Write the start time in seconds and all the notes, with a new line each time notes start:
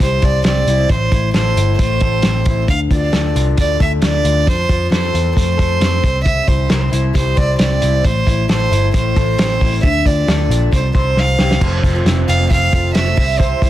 Already playing: C3 C4 E4 C5
0.00 C2 G3 C5, kick, snare, closed hi-hat
0.22 C2 C5 D5, kick, closed hi-hat
0.44 C2 C4 D5, snare, closed hi-hat
0.67 C2 E4, closed hi-hat
0.89 A1 A2 C5, kick, closed hi-hat
1.12 A1 E4, kick, closed hi-hat
1.34 A1 A4 C5, snare, closed hi-hat
1.56 G1 E4, closed hi-hat
1.79 A1 A3 C5, kick, closed hi-hat
2.00 A1 A4, kick, closed hi-hat
2.22 A1 C4, snare, closed hi-hat
2.45 A1 E4, kick, closed hi-hat
2.68 D2 D3 F5, kick, closed hi-hat
2.91 D2 F4 D5, kick, closed hi-hat
3.13 D2 A4, snare, closed hi-hat
3.35 C2 F4, closed hi-hat
3.57 D2 A3 D5, kick, closed hi-hat
3.80 D2 A4 E5, kick, closed hi-hat
4.02 D2 D4 D5, snare, closed hi-hat
4.24 D2 F4, closed hi-hat
4.47 F2 F3 C5, kick, closed hi-hat
4.69 F2 F4, kick, closed hi-hat
4.91 F2 A4 C5, snare, closed hi-hat
5.14 E2 F4, closed hi-hat
5.36 F2 A3 C5, kick, closed hi-hat
5.58 F2 A4, kick, closed hi-hat
5.80 F2 C4, snare, closed hi-hat
6.03 C2 C3, kick, closed hi-hat
6.25 C3 E5, kick, closed hi-hat
6.47 C2 E4 C5, kick, closed hi-hat
6.69 C2 A#4, snare, closed hi-hat
6.81 C5
6.92 C2 E4, closed hi-hat
7.14 C2 G3 C5, kick, snare, closed hi-hat
7.36 C2 C5 D5, kick, closed hi-hat
7.59 C2 C4 D5, snare, closed hi-hat
7.82 C2 E4, closed hi-hat
8.04 A1 A2 C5, kick, closed hi-hat
8.27 A1 E4, kick, closed hi-hat
8.49 A1 A4 C5, snare, closed hi-hat
8.71 G1 E4, closed hi-hat
8.94 A1 A3 C5, kick, closed hi-hat
9.16 A1 A4, kick, closed hi-hat
9.38 A1 C4, snare, closed hi-hat
9.61 A1 E4, kick, open hi-hat
9.83 D2 D3 E5, kick, closed hi-hat
10.05 D2 F4 D5, kick, closed hi-hat
10.28 D2 A4, snare, closed hi-hat
10.49 A#1 F4, closed hi-hat
10.72 C2 C3 C5, kick, snare, closed hi-hat
10.95 C2 C5, kick, closed hi-hat
11.16 C2 C4 F5, snare
11.39 C2 G4, snare
11.51 snare
11.61 F1 F3 A3 C4 F4 C5, kick, crash
11.83 F1 F4, kick, closed hi-hat
11.95 A3 C4 F4
12.05 F1 C4, snare, closed hi-hat
12.28 F1 F4 F5, closed hi-hat
12.38 A3 C4 F4
12.50 F1 C4 F5, kick, closed hi-hat
12.72 F1 F3 A3 C4 F4, kick, closed hi-hat
12.95 F1 C4 E5, snare, closed hi-hat
13.05 F3 A3 C4 F4
13.16 C2 C3 E3 G3 C4 E4, kick, open hi-hat
13.40 C3 C5, kick, closed hi-hat
13.62 C2 E4, kick, closed hi-hat